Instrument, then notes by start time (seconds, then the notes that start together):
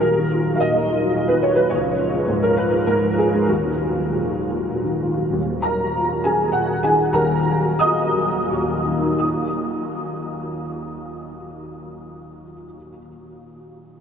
felt piano
Already playing: F#3
0.01 D#1 D#2 A#4
0.18 D#3
0.31 F4
0.48 F#3
0.56 F5
0.60 A#2 D#5
0.74 D#3
0.88 F4
1.02 F#3
1.14 A#2
1.28 D#3 B4
1.43 F4 C#5
1.55 F#3 B4
1.70 C#2 C#5
1.86 F3
2.00 F4
2.14 G#3
2.27 G#2
2.43 F3 A#4
2.57 F4 B4
2.73 G#3
2.86 G#2 A#4
3.04 F3
3.18 F4 G#4
3.34 G#3
3.47 D#1 D#2 F#4
3.64 D#3
3.81 F4
3.94 F#3
4.11 A#2
4.25 D#3
4.42 F4
4.53 F#3
4.69 A#2
4.84 D#3
5.02 F4
5.15 F#3
5.31 D#1 D#2
5.62 F#3 A#4 A#5
5.95 F4
6.24 F#3 G#4 G#5
6.52 A#2 F#4 F#5
6.83 D#3 G#4 G#5
7.13 D#1 D#2 A#4 A#5
7.46 F#3
7.79 F4 D#5 D#6
8.13 F#3
8.47 A#2
8.52 D#2
8.63 A#2
8.75 F#3
8.84 D#3 A#3
8.98 D#4
9.09 F4
9.19 D#6